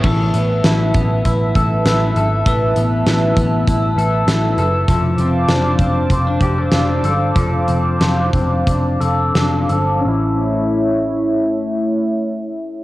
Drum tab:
CC |x-------|--------|--------|--------|
HH |-xxxxxxx|xxxxxxxx|xxxxxxxx|xxxxxxxx|
SD |--o---o-|--o---o-|--o---o-|--o---o-|
BD |o--ooo--|o--oo---|o--ooo--|o--oo---|

CC |--------|
HH |--------|
SD |--------|
BD |--------|